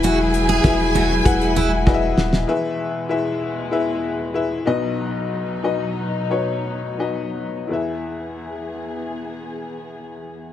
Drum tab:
HH |x-xxx-x-xxx-----|----------------|----------------|----------------|
SD |----o--o----o-oo|----------------|----------------|----------------|
FT |------o---o-----|----------------|----------------|----------------|
BD |----o---o---o---|----------------|----------------|----------------|